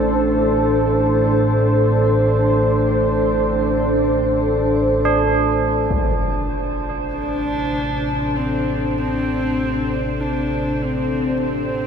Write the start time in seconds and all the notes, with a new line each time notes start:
Already playing: A1 A2 D4 A4 C5
5.05 D4
5.90 A1 C3 D4 C5, impact
7.13 D4
8.06 A4
8.36 C4
8.97 C4
10.20 D4
10.62 C5
10.82 C4
11.42 C4